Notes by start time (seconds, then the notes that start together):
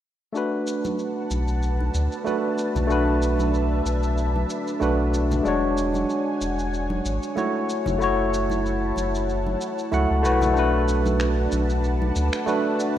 0.33 A3 D4 F#4 B4 F#5 A5, shaker
0.37 B4
0.67 shaker
0.84 high conga, shaker
0.99 shaker
1.31 B1, high conga, shaker
1.48 shaker
1.62 shaker
1.81 high conga
1.94 D2, shaker
2.12 shaker
2.24 A3 D4 F#4 B4, high conga, shaker
2.58 shaker
2.75 B1, high conga, low conga, shaker
2.87 A3 D4 F#4 E5, shaker
2.92 B4
3.22 shaker
3.39 high conga, shaker
3.54 shaker
3.85 B1, shaker
4.03 shaker
4.18 shaker
4.36 high conga
4.50 shaker
4.67 shaker
4.80 B1 A3 D4 F#4 B4, high conga, shaker
5.14 shaker
5.31 high conga, low conga, shaker
5.43 E1 G#3 D4 F#4 C#5 F#5 G#5, shaker
5.48 C#5
5.77 shaker
5.94 high conga, shaker
6.09 shaker
6.41 E1, shaker
6.59 shaker
6.74 shaker
6.90 high conga
7.05 G#1, shaker
7.23 shaker
7.36 A3 E4 F#4 C#5, high conga, shaker
7.69 E4 A5, shaker
7.86 F#1, high conga, low conga, shaker
7.99 A3 E4 F#4, shaker
8.04 C#5
8.34 shaker
8.50 high conga, shaker
8.66 shaker
8.96 F#1, high conga, shaker
9.15 shaker
9.29 shaker
9.47 high conga
9.61 shaker
9.79 shaker
9.91 C#2 A3 E4 F#4 F#5, high conga, shaker
10.10 C#2
10.23 B1 A3 E4 F#4 B4, shaker
10.41 high conga, low conga, shaker
10.54 A3 D4 F#4 B4, shaker
10.59 B4
10.88 shaker
11.06 high conga, shaker
11.20 finger snap, shaker
11.52 B1, high conga, shaker
11.70 shaker
11.84 shaker
12.02 high conga
12.16 D2, shaker
12.33 finger snap, shaker
12.46 A3 D4 F#4 B4, high conga, shaker
12.80 shaker